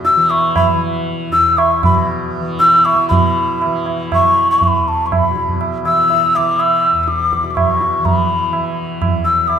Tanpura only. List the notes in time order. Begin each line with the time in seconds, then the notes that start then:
Already playing: E2 B2 E3
0.17 E3
0.73 E3
1.30 E2
1.84 B2
2.40 E3
2.95 E3
3.09 B2
3.66 E3
4.20 E3
4.76 E2
5.30 B2
5.85 E3
6.38 E3
6.92 E2
7.44 B2
7.98 E3
8.52 E3
9.05 E2